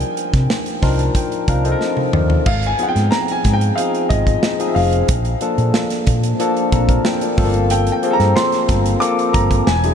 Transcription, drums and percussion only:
0.00 closed hi-hat
0.17 closed hi-hat
0.34 kick, snare, closed hi-hat
0.50 snare
0.66 closed hi-hat
0.82 kick, snare, open hi-hat
0.99 closed hi-hat
1.15 kick, closed hi-hat
1.32 closed hi-hat
1.48 kick, closed hi-hat
1.65 closed hi-hat
1.81 snare
1.97 high tom
2.13 mid tom
2.30 floor tom
2.46 kick, crash
2.63 closed hi-hat
2.79 closed hi-hat
2.96 snare, closed hi-hat
3.12 snare
3.28 closed hi-hat
3.44 kick, snare, closed hi-hat
3.61 closed hi-hat
3.78 closed hi-hat
3.95 closed hi-hat
4.10 kick, closed hi-hat
4.27 kick, closed hi-hat
4.43 snare
4.60 closed hi-hat
4.76 open hi-hat
4.93 closed hi-hat
5.08 kick, closed hi-hat
5.25 closed hi-hat
5.41 closed hi-hat
5.58 closed hi-hat
5.74 snare
5.90 snare, closed hi-hat
6.07 kick, closed hi-hat
6.23 closed hi-hat
6.40 closed hi-hat
6.57 closed hi-hat
6.72 kick, closed hi-hat
6.89 kick, closed hi-hat
7.05 snare
7.21 closed hi-hat
7.38 kick, open hi-hat
7.54 closed hi-hat
7.70 closed hi-hat
7.87 closed hi-hat
8.03 closed hi-hat
8.20 snare, closed hi-hat
8.37 snare
8.52 snare, closed hi-hat
8.69 kick, snare, closed hi-hat
8.86 closed hi-hat
9.02 closed hi-hat
9.19 closed hi-hat
9.34 kick, closed hi-hat
9.51 kick, closed hi-hat
9.67 snare
9.84 closed hi-hat

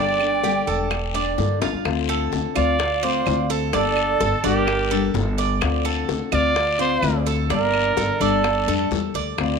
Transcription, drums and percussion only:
0.20 high bongo, claves
0.44 high bongo, short guiro
0.67 short guiro
0.91 high bongo, long guiro, claves
1.14 high bongo
1.38 high bongo, low bongo, short guiro
1.62 high bongo, short guiro
1.85 high bongo, long guiro, claves
2.09 high bongo
2.32 high bongo, short guiro
2.55 high bongo, short guiro, claves
2.79 high bongo, long guiro
3.26 high bongo, low bongo, short guiro, claves
3.49 high bongo, short guiro
3.73 high bongo, long guiro
3.97 high bongo, claves
4.20 high bongo, short guiro
4.44 high bongo, short guiro
4.67 high bongo, long guiro, claves
5.14 high bongo, low bongo, short guiro
5.38 high bongo, short guiro
5.61 high bongo, long guiro, claves
5.86 high bongo
6.09 high bongo, short guiro
6.32 high bongo, short guiro, claves
6.55 high bongo, long guiro
7.02 high bongo, low bongo, short guiro, claves
7.26 high bongo, short guiro
7.50 high bongo, long guiro
7.74 high bongo, claves
7.97 high bongo, short guiro
8.21 high bongo, short guiro
8.44 high bongo, long guiro, claves
8.91 high bongo, low bongo, short guiro
9.14 high bongo, short guiro
9.38 high bongo, long guiro, claves

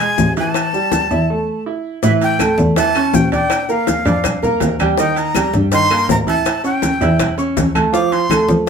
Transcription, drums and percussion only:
0.00 high timbale, claves, maracas
0.18 high bongo, low bongo, high conga, low timbale, maracas
0.37 high bongo, high timbale, maracas
0.54 high bongo, high conga, high timbale, claves, maracas
0.73 high bongo, high conga, maracas
0.92 high bongo, high conga, high timbale, low timbale, maracas
1.11 maracas
2.03 high bongo, high conga, maracas
2.21 high bongo, high conga, high timbale, maracas
2.39 high bongo, high conga, high timbale, claves, maracas
2.58 high conga, maracas
2.76 high bongo, high conga, high timbale, maracas
2.95 high bongo, high conga, high timbale, claves, maracas
3.13 high bongo, low bongo, high conga, low timbale, maracas
3.32 high bongo, high conga, high timbale, maracas
3.50 high bongo, high conga, high timbale, claves, maracas
3.69 high bongo, high conga, maracas
3.87 high bongo, high conga, high timbale, maracas
4.05 high conga, high timbale, maracas
4.24 high bongo, high conga, low conga, high timbale, claves, maracas
4.43 high bongo, high conga, low conga, maracas
4.60 high bongo, low bongo, high conga, high timbale, low timbale, maracas
4.79 high bongo, high conga, high timbale, claves, maracas
4.98 high bongo, high conga, maracas
5.16 high bongo, high conga, high timbale, maracas
5.35 high bongo, high conga, high timbale, claves, maracas
5.54 high conga, maracas
5.72 high bongo, high conga, high timbale, maracas
5.90 high bongo, high conga, high timbale, claves, maracas
6.09 high bongo, low bongo, high conga, low timbale, maracas
6.27 high bongo, high conga, high timbale, maracas
6.45 high bongo, high conga, high timbale, claves, maracas
6.64 high bongo, high conga, maracas
6.82 high bongo, high conga, high timbale, maracas
7.01 high conga, high timbale, maracas
7.20 high bongo, high conga, low conga, high timbale, claves, maracas
7.38 high bongo, high conga, maracas
7.57 high bongo, low bongo, high conga, high timbale, maracas
7.75 high bongo, high conga, high timbale, claves, maracas
7.94 high bongo, high conga, maracas
8.12 high bongo, high conga, high timbale, maracas
8.30 high bongo, high conga, high timbale, claves, maracas
8.49 high conga, maracas

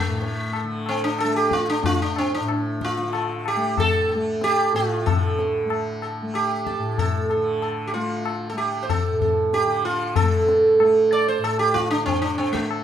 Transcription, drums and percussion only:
0.22 tabla te
0.53 tabla na
0.86 tabla na
1.19 tabla na
1.51 tabla ke
1.84 tabla tin, tabla ge
2.16 tabla na
2.48 tabla na
2.81 tabla ke
2.97 tabla te
3.13 tabla na
3.46 tabla na
3.77 tabla na, tabla ge
4.09 tabla te
4.41 tabla te
4.75 tabla te
5.07 tabla na, tabla ge
5.39 tabla te
5.70 tabla na
6.02 tabla na
6.34 tabla na
6.67 tabla ke
6.98 tabla tin, tabla ge
7.30 tabla na
7.62 tabla na
7.94 tabla te
8.26 tabla na
8.57 tabla na
8.89 tabla na, tabla ge
9.21 tabla ge
9.53 tabla te
9.84 tabla te
10.16 tabla na, tabla ge
10.48 tabla te
10.80 tabla na
11.12 tabla na
11.44 tabla na
11.76 tabla ke
12.07 tabla tin, tabla ge
12.39 tabla na
12.55 tabla ke
12.71 tabla na

